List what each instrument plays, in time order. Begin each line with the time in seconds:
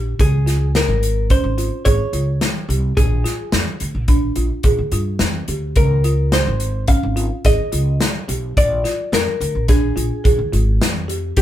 Already playing: upright bass A#1
0.19 upright bass C#2, hollow-body jazz guitar G#4, kick, closed hi-hat
0.46 marimba F4, snare, closed hi-hat
0.75 hollow-body jazz guitar A#4, snare, closed hi-hat
0.88 upright bass G#1
1.03 closed hi-hat
1.30 marimba C#4, hollow-body jazz guitar C5, kick, closed hi-hat
1.44 upright bass G#1
1.58 marimba F4, closed hi-hat
1.85 upright bass G#1, marimba G#4, hollow-body jazz guitar C#5, kick, closed hi-hat
2.13 upright bass C#2, marimba F4, closed hi-hat
2.41 snare, closed hi-hat
2.68 upright bass C2, marimba G4, closed hi-hat
2.97 upright bass A#1, hollow-body jazz guitar G#4, kick, closed hi-hat
3.24 marimba F4, snare, closed hi-hat
3.52 upright bass F2, snare, closed hi-hat
3.80 upright bass D2, closed hi-hat
3.95 upright bass A#1
4.08 marimba D4, kick, closed hi-hat
4.36 upright bass A#1, marimba F4, closed hi-hat
4.63 upright bass A#1, marimba G#4, kick, closed hi-hat
4.78 upright bass D2
4.92 upright bass G2, marimba F4, closed hi-hat
5.19 upright bass F2, snare, closed hi-hat
5.48 upright bass D2, marimba G4, closed hi-hat
5.76 upright bass C#2, hollow-body jazz guitar A#4, kick, closed hi-hat
6.04 marimba F4, closed hi-hat
6.32 hollow-body jazz guitar C5, snare, closed hi-hat
6.47 upright bass G#1
6.60 closed hi-hat
6.88 marimba C#4, hollow-body jazz guitar F5, kick, closed hi-hat
7.03 upright bass G#1
7.16 marimba F4, closed hi-hat
7.45 upright bass G#1, marimba G#4, hollow-body jazz guitar D#5, kick, snare, closed hi-hat
7.72 upright bass C#2, marimba F4, closed hi-hat
8.01 snare, closed hi-hat
8.28 upright bass B1, marimba G4, closed hi-hat
8.57 upright bass A#1, hollow-body jazz guitar D5, kick, closed hi-hat
8.84 marimba F4, snare, closed hi-hat
9.12 upright bass F2, hollow-body jazz guitar A#4, snare, closed hi-hat
9.40 upright bass D2, closed hi-hat
9.55 upright bass A#1
9.68 marimba D4, hollow-body jazz guitar G#4, kick, snare, closed hi-hat
9.96 upright bass A#1, marimba F4, closed hi-hat
10.24 upright bass A#1, marimba G#4, kick, closed hi-hat
10.39 upright bass D2
10.53 upright bass G#1, marimba F4, closed hi-hat
10.81 upright bass F2, snare, closed hi-hat
11.08 marimba G4, closed hi-hat
11.37 upright bass C#2, hollow-body jazz guitar G4, kick, closed hi-hat